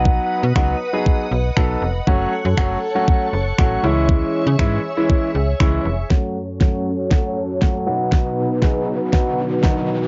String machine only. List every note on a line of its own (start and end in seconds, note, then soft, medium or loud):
0.00 2.05 B4 medium
0.00 2.05 D#5 medium
0.00 3.80 F#5 medium
0.00 2.05 D#6 medium
2.07 3.82 A4 medium
2.07 3.82 C#5 medium
2.07 6.06 C#6 medium
3.84 6.08 G#4 medium
3.84 6.08 C#5 medium
3.84 6.08 E5 medium
6.10 7.85 F#2 medium
6.10 7.85 F#3 medium
6.10 7.85 C#4 medium
6.10 7.85 A4 medium
6.10 7.85 C#5 medium
7.87 10.08 B2 medium
7.87 10.08 F#3 medium
7.87 10.08 D#4 medium
7.87 10.08 B4 medium
7.87 10.08 F#5 medium